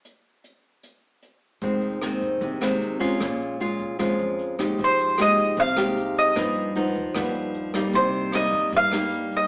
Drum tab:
HH |x-x-x-x-|xxxxxxxx|xxxxxxxx|xxxxxxxx|
SD |--------|--r--r--|r---r--r|--r--r--|
BD |--------|o--oo--o|o--oo--o|o--oo--o|

HH |xxxxxxx-|xxxxxxxx|
SD |r---r--r|--r--r--|
BD |o--oo--o|o--oo--o|